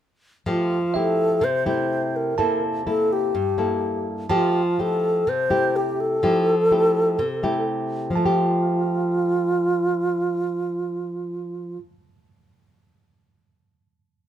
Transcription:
0.46 1.40 F3 medium
0.46 0.77 A3 medium
0.46 0.98 F4 medium
0.46 0.77 G4 medium
0.94 1.42 A3 soft
0.94 1.42 E4 medium
0.94 1.42 G4 medium
0.94 1.46 A4 medium
0.94 1.92 E5 medium
1.41 2.35 C3 medium
1.41 1.67 C5 loud
1.66 2.34 A3 medium
1.66 2.34 E4 medium
1.66 2.34 G4 medium
1.66 2.18 C5 medium
2.16 2.63 A#4 medium
2.38 3.32 C3 medium
2.38 2.82 A#3 medium
2.38 2.82 E4 medium
2.38 2.83 A4 medium
2.38 3.36 A5 soft
2.86 3.34 A#3 medium
2.86 3.34 E4 soft
2.86 3.34 A4 medium
2.86 3.14 A4 loud
3.13 4.07 G4 medium
3.35 4.28 G2 medium
3.58 4.26 A#3 medium
3.58 4.26 E4 medium
3.58 4.27 A4 medium
4.29 5.23 F3 medium
4.29 4.61 A3 medium
4.29 4.82 F4 medium
4.29 4.61 G4 medium
4.29 5.28 A5 soft
4.79 5.26 A3 soft
4.79 5.26 E4 soft
4.79 5.27 G4 medium
4.79 5.30 A4 loud
5.27 6.20 C3 medium
5.27 5.78 C5 loud
5.50 6.18 A3 medium
5.50 6.19 E4 medium
5.50 6.19 G4 medium
5.76 6.02 G4 medium
6.00 7.68 A4 loud
6.23 7.16 F3 medium
6.23 6.54 A3 medium
6.23 6.54 E4 medium
6.23 6.54 G4 medium
6.71 7.19 A3 soft
6.71 7.19 E4 soft
6.71 7.19 G4 medium
7.19 8.12 C3 medium
7.43 8.11 A3 medium
7.43 8.11 E4 medium
7.43 8.11 G4 medium
8.10 11.77 F3 medium
8.16 11.83 A3 medium
8.16 11.79 F4 medium
8.16 11.78 A5 soft
8.26 11.92 G4 medium

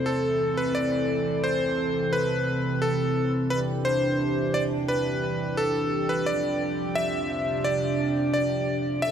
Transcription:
0.00 6.24 C3 medium
0.00 3.48 E3 medium
0.00 3.48 C4 medium
0.00 3.48 A4 medium
0.06 0.60 A4 medium
0.57 0.76 B4 medium
0.75 1.47 D5 loud
1.44 2.16 C5 medium
2.13 2.78 B4 medium
2.82 3.31 A4 medium
3.50 6.25 E3 medium
3.50 6.25 D4 medium
3.50 9.00 G4 medium
3.50 3.58 B4 loud
3.85 4.57 C5 loud
4.54 4.62 D5 loud
4.88 5.60 B4 loud
5.57 6.12 A4 medium
6.09 6.28 B4 medium
6.26 9.01 C3 medium
6.26 9.01 F3 medium
6.26 9.01 D4 medium
6.26 6.98 D5 loud
6.95 7.67 E5 loud
7.64 8.32 D5 loud
8.34 9.05 D5 loud
9.02 9.11 C3 medium
9.02 9.11 E3 medium
9.02 9.11 C4 medium
9.02 9.11 A4 loud
9.02 9.10 E5 loud

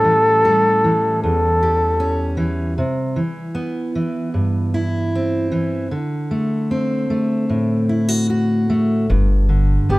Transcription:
0.00 1.22 A2 medium
0.00 0.45 G3 soft
0.00 1.99 C#4 soft
0.00 1.61 G4 soft
0.00 1.21 A4 medium
0.04 0.84 E3 soft
0.45 3.54 G3 medium
0.84 2.36 E3 soft
1.23 2.80 E2 medium
1.23 2.36 A4 medium
1.63 2.75 G4 soft
2.00 2.74 C#4 medium
2.37 2.73 E3 medium
2.78 3.18 C3 medium
3.16 3.94 E3 soft
3.55 5.87 B3 soft
3.95 5.50 E3 medium
4.34 5.87 G2 soft
4.74 5.93 E4 medium
5.15 5.89 C4 soft
5.52 5.87 E3 medium
5.91 9.48 D3 medium
6.31 7.09 A3 soft
6.71 9.05 C4 soft
7.10 8.68 A3 soft
7.49 9.10 A2 medium
7.89 8.08 E4 soft
8.09 8.29 F#4 soft
8.30 9.05 F#4 medium
8.70 9.05 A3 soft
9.09 9.77 G1 medium
9.09 9.99 G2 medium
9.49 9.99 D3 soft
9.89 9.99 G1 medium
9.89 9.99 B3 medium
9.89 9.99 G4 medium

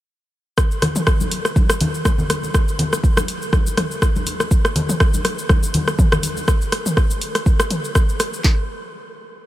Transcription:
0.58 kick loud
0.58 cross-stick loud
0.58 shaker medium
0.71 shaker medium
0.82 cross-stick medium
0.82 open hi-hat medium
0.82 low conga loud
0.82 shaker soft
0.96 mid tom medium
0.96 muted conga medium
0.96 shaker medium
1.07 kick loud
1.07 cross-stick loud
1.07 shaker medium
1.20 high conga medium
1.20 shaker medium
1.31 open hi-hat medium
1.31 muted conga soft
1.31 shaker medium
1.45 cross-stick medium
1.45 shaker medium
1.56 kick loud
1.56 high conga medium
1.56 shaker medium
1.70 cross-stick loud
1.70 muted conga soft
1.70 shaker loud
1.81 open hi-hat medium
1.81 high conga medium
1.81 low conga loud
1.81 shaker medium
1.94 shaker medium
2.05 kick loud
2.05 cross-stick loud
2.05 mid tom loud
2.05 muted conga soft
2.05 shaker medium
2.18 low conga loud
2.18 shaker medium
2.30 cross-stick medium
2.30 open hi-hat medium
2.30 high conga medium
2.30 shaker medium
2.43 muted conga medium
2.43 shaker medium
2.54 kick loud
2.54 cross-stick loud
2.54 shaker loud
2.68 shaker medium
2.79 open hi-hat medium
2.79 low conga loud
2.79 shaker medium
2.93 cross-stick medium
2.93 muted conga medium
2.93 shaker loud
3.04 kick loud
3.04 shaker medium
3.17 cross-stick loud
3.17 high conga loud
3.17 shaker loud
3.28 open hi-hat medium
3.28 shaker medium
3.42 shaker medium
3.53 kick loud
3.53 cross-stick medium
3.53 high conga loud
3.53 shaker medium
3.67 muted conga soft
3.67 shaker medium
3.77 cross-stick medium
3.77 open hi-hat medium
3.77 mid tom medium
3.77 high conga medium
3.77 shaker medium
3.91 shaker medium
4.02 kick loud
4.02 cross-stick loud
4.02 muted conga soft
4.02 shaker loud
4.16 high conga medium
4.16 shaker medium
4.27 open hi-hat medium
4.27 high conga medium
4.27 shaker medium
4.40 cross-stick medium
4.40 muted conga medium
4.40 shaker medium
4.51 kick loud
4.51 shaker loud
4.65 cross-stick medium
4.65 shaker medium
4.76 open hi-hat medium
4.76 low conga loud
4.76 shaker medium
4.89 mid tom medium
4.89 muted conga medium
4.89 shaker loud
5.00 kick loud
5.00 cross-stick loud
5.00 shaker medium
5.14 high conga medium
5.14 shaker loud
5.25 cross-stick medium
5.25 open hi-hat medium
5.25 muted conga soft
5.25 shaker medium
5.38 shaker medium
5.49 kick loud
5.49 cross-stick medium
5.49 high conga loud
5.49 shaker medium
5.63 muted conga medium
5.63 shaker medium
5.74 open hi-hat medium
5.74 high conga medium
5.74 low conga loud
5.74 shaker medium
5.88 cross-stick medium
5.88 shaker medium
5.99 kick loud
5.99 mid tom medium
5.99 muted conga soft
5.99 shaker loud
6.12 cross-stick loud
6.12 low conga medium
6.12 shaker medium
6.23 open hi-hat medium
6.23 high conga medium
6.23 shaker loud
6.37 muted conga soft
6.37 shaker medium
6.48 kick loud
6.48 cross-stick medium
6.48 shaker loud
6.61 shaker medium
6.72 cross-stick medium
6.72 open hi-hat medium
6.72 shaker medium
6.86 mid tom medium
6.86 shaker loud
6.97 kick loud
6.97 cross-stick medium
6.97 shaker medium
7.11 shaker loud
7.21 open hi-hat medium
7.21 shaker medium
7.35 cross-stick medium
7.35 open hi-hat soft
7.35 shaker medium
7.46 kick loud
7.46 shaker medium
7.60 cross-stick loud
7.60 shaker loud
7.71 open hi-hat medium
7.71 mid tom medium
7.71 shaker medium
7.84 shaker medium
7.95 kick loud
7.95 cross-stick medium
7.95 shaker loud
8.09 shaker medium
8.20 cross-stick medium
8.20 open hi-hat medium
8.20 shaker medium
8.34 shaker medium
8.44 kick loud
8.44 snare loud
8.44 clap medium

